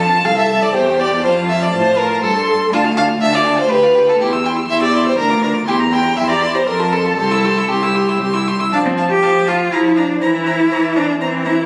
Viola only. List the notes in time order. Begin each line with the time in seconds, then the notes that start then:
Already playing: F4
0.25 A4
0.74 G4
1.24 F4
1.73 F4
2.23 A4
2.72 D4
2.85 F4
2.97 D4
3.09 F4
3.21 D4
3.33 F4
3.46 D4
3.58 F4
3.71 G4
3.83 F4
3.95 G4
4.08 F4
4.20 E4
4.33 G4
4.45 E4
4.58 G4
4.70 E4
4.82 G4
4.93 E4
5.06 G4
5.18 D4
5.30 F4
5.43 D4
5.55 F4
5.67 E4
5.80 G4
5.93 E4
6.05 G4
6.18 E4
6.30 G4
6.43 E4
6.54 G4
6.67 A4
6.80 F4
6.93 A4
7.05 F4
7.19 G4
7.31 E4
7.44 G4
7.57 E4
7.70 G4
7.82 E4
7.96 G4
8.09 E4
8.22 G4
8.34 E4
8.47 G4
8.60 E4
8.73 F3
9.23 F3
9.72 F3
10.22 E3
10.71 E3
11.20 E3